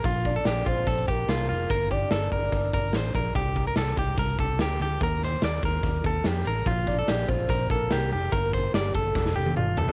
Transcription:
<<
  \new Staff \with { instrumentName = "Soft synth lead" } { \time 4/4 \key bes \major \tempo 4 = 145 r8 d''4 c''4 bes'4. | bes'8 d''4 d''2 r8 | r1 | r1 |
r8 d''4 c''4 bes'4 r8 | bes'4 g'8 a'2 r8 | }
  \new Staff \with { instrumentName = "Clean electric guitar" } { \time 4/4 \key bes \major f'8. a'16 g'8 f'8 a'8 g'8 f'8 f'8 | bes'8 g'8 a'8 bes'4 bes'8 c''8 bes'8 | g'8. bes'16 a'8 g'8 bes'8 a'8 g'8 g'8 | bes'8 c''8 d''8 bes'4 a'8 g'8 bes'8 |
f'8. a'16 g'8 f'8 bes'8 a'8 g'8 g'8 | bes'8 c''8 d''8 a'4 g'8 f'8 a'8 | }
  \new Staff \with { instrumentName = "Fingered electric bass" } { \clef bass \time 4/4 \key bes \major bes,,4 bes,,8 bes,,8 bes,,8 bes,,8 c,8 f,,8 | g,,4 g,,8 g,,8 g,,8 g,,8 a,,8 bes,,8 | c,4 c,8 c,8 c,8 c,8 d,8 d,8 | ees,4 ees,8 ees,8 ees,8 ees,8 f,8 a,,8 |
bes,,4 bes,,8 bes,,8 bes,,8 bes,,8 c,8 f,,8 | g,,4 g,,8 g,,8 f,,8 f,,8 g,,8 f,,8 | }
  \new DrumStaff \with { instrumentName = "Drums" } \drummode { \time 4/4 <hh bd>8 <hh bd>8 <hh sn>8 <hh bd>8 <hh bd>8 <hh bd>8 <hh sn>8 hh8 | <hh bd>8 <hh bd>8 <hh sn>8 <hh bd>8 <hh bd>8 <hh bd>8 <hh sn>8 <hho bd>8 | <hh bd>8 <hh bd>8 <hh sn>8 <hh bd>8 <hh bd>8 <hh bd>8 <hh sn>8 hh8 | <hh bd>8 <hh sn>8 <hh sn>8 <hh bd>8 <hh bd>8 <hh bd>8 <hh sn>8 hh8 |
<hh bd>8 <hh bd>8 <hh sn>8 <hh bd>8 <hh bd>8 <hh bd>8 <hh sn>8 hh8 | <hh bd>8 <hh bd>8 <hh sn>8 <hh bd>8 <bd sn>16 sn8 tommh16 toml8 tomfh16 tomfh16 | }
>>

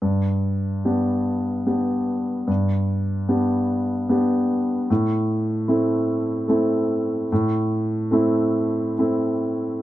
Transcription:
\new Staff \with { instrumentName = "Grand piano" } { \time 3/4 \key g \mixolydian \tempo 4 = 74 g,4 <b d' g'>4 <b d' g'>4 | g,4 <b d' g'>4 <b d' g'>4 | a,4 <a c' e'>4 <a c' e'>4 | a,4 <a c' e'>4 <a c' e'>4 | }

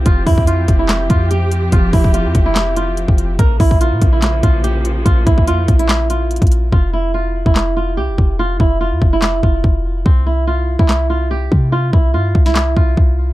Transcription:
<<
  \new Staff \with { instrumentName = "Nylon-string guitar" } { \time 4/4 \key bes \dorian \tempo 4 = 144 f'8 e'8 f'8. e'8. f'8 g'4 | f'8 e'8 f'8. e'8. f'4. | bes'8 e'8 f'8. e'8. f'8 g'4 | f'8 e'8 f'8. e'8. f'4. |
f'8 e'8 f'8. e'8. f'8 g'4 | f'8 e'8 f'8. e'8. f'4. | c'8 e'8 f'8. e'8. f'8 g'4 | f'8 e'8 f'8. e'8. f'4. | }
  \new Staff \with { instrumentName = "String section" } { \clef bass \time 4/4 \key bes \dorian <f c' g'>1~ | <f c' g'>1 | <des f bes>1~ | <des f bes>1 |
r1 | r1 | r1 | r1 | }
  \new Staff \with { instrumentName = "808-style bass" } { \clef bass \time 4/4 \key bes \dorian f,,8 f,4 f,,4 f,4. | f,,8 f,,8. f,16 f,,4.~ f,,16 f,,8. | bes,,8 bes,,8. bes,16 bes,,4 bes,,4. | bes,,8 bes,,8 f,8 bes,,4.~ bes,,16 bes,,8. |
f,,4.~ f,,16 f,,4~ f,,16 c,16 f,,16 f,,8~ | f,,8 f,,8. f,16 f,,4 f,,8 f,,4 | c,4.~ c,16 c,4.~ c,16 c8~ | c8 c,8 g,8 c,4 c,8 c,4 | }
  \new DrumStaff \with { instrumentName = "Drums" } \drummode { \time 4/4 <hh bd>8 <hho bd>16 bd16 hh8 <hh bd>8 <hc hh sn>8 <hh bd>8 hh8 hh8 | <hh bd>8 <hho bd>16 bd16 hh8 <hh bd>8 <hc hh sn>8 hh8 hh16 bd16 hh8 | <hh bd>8 <hho bd>16 bd16 hh8 <hh bd>8 <hc hh sn>8 <hh bd>8 hh8 hh8 | <hh bd>8 <hh bd>16 bd16 hh8 <hh bd>16 hh16 <hc hh sn>8 hh8 hh32 hh32 <hh bd>32 hh32 hh8 |
bd4 r8. bd16 <hc sn>4 r8 bd8 | r8 bd8 r8 bd8 <hc sn>8 bd8 bd4 | bd4 r8. bd16 <hc sn>4 r8 bd8 | r8 bd8 r8 bd16 sn16 <hc sn>8 bd8 bd4 | }
>>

